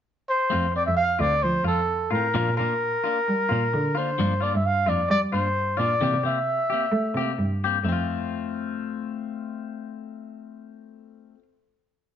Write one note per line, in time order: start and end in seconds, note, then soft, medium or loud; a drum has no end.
0.29 0.72 C5 medium
0.50 0.85 F2 medium
0.50 0.65 A3 medium
0.50 0.66 C4 medium
0.50 0.67 F4 medium
0.72 0.90 C4 soft
0.72 muted clean electric guitar stroke soft
0.76 0.86 D5 medium
0.86 1.18 F2 medium
0.86 0.96 E5 medium
0.96 1.21 F5 loud
1.19 1.31 D2 medium
1.19 1.36 C4 soft
1.19 1.34 F4 soft
1.19 1.44 D5 loud
1.43 1.64 F3 medium
1.43 1.66 C5 loud
1.64 2.07 F2 medium
1.64 1.81 C4 soft
1.64 1.80 F4 soft
1.64 2.13 A4 medium
2.11 2.23 A2 medium
2.11 2.26 F4 medium
2.11 2.56 A#4 loud
2.15 2.28 C4 soft
2.34 2.46 A#2 loud
2.34 2.49 F3 medium
2.34 2.49 A#3 medium
2.34 2.49 D4 medium
2.34 2.50 F4 medium
2.49 2.57 A#2 medium
2.57 2.80 A#2 medium
2.57 2.73 A#3 soft
2.57 2.73 D4 soft
2.57 2.72 F4 soft
2.57 3.99 A#4 medium
3.04 3.20 A#3 soft
3.04 3.19 D4 soft
3.04 3.18 F4 soft
3.28 3.48 G3 medium
3.49 3.73 A#2 medium
3.49 3.65 A#3 soft
3.49 3.63 F4 medium
3.73 4.14 D3 medium
3.95 4.11 A#3 soft
3.95 4.10 D4 soft
3.95 4.09 F4 medium
3.95 4.44 C5 loud
4.18 4.50 G2 medium
4.18 4.32 F3 medium
4.18 4.33 A#3 medium
4.18 4.33 D4 medium
4.18 muted clean electric guitar stroke medium
4.40 4.56 A#3 soft
4.40 4.56 D4 soft
4.40 4.55 F4 medium
4.40 4.54 D5 medium
4.54 4.84 G2 medium
4.54 4.67 E5 medium
4.66 4.90 F5 loud
4.86 4.98 F2 medium
4.86 5.02 A#3 soft
4.86 5.02 D4 soft
4.86 5.01 F4 soft
4.86 5.10 D5 medium
5.10 5.30 G3 loud
5.10 5.21 D5 loud
5.32 5.74 G2 medium
5.32 5.48 A#3 soft
5.32 5.48 D4 soft
5.32 5.47 F4 soft
5.32 5.79 C5 loud
5.77 5.90 A#2 medium
5.77 5.94 A#3 soft
5.77 5.93 D4 medium
5.77 5.92 F4 medium
5.77 6.24 D5 medium
6.01 6.12 C3 loud
6.01 6.15 E3 medium
6.01 6.16 A#3 medium
6.01 6.16 C4 medium
6.01 6.16 G4 medium
6.14 6.23 C3 medium
6.23 6.45 C3 medium
6.23 6.39 A#3 soft
6.23 6.39 C4 soft
6.23 6.38 G4 soft
6.23 7.58 E5 medium
6.70 6.86 A#3 soft
6.70 6.85 C4 soft
6.70 6.84 G4 soft
6.92 7.13 A3 medium
7.14 7.38 C3 medium
7.14 7.31 G4 medium
7.19 7.33 A#3 soft
7.19 7.31 C4 soft
7.38 7.80 G2 medium
7.64 7.78 A#3 soft
7.64 7.78 C4 medium
7.64 7.77 G4 medium
7.83 11.21 F2 medium
7.83 11.35 A3 medium
7.89 11.39 C4 medium
7.89 11.42 F4 medium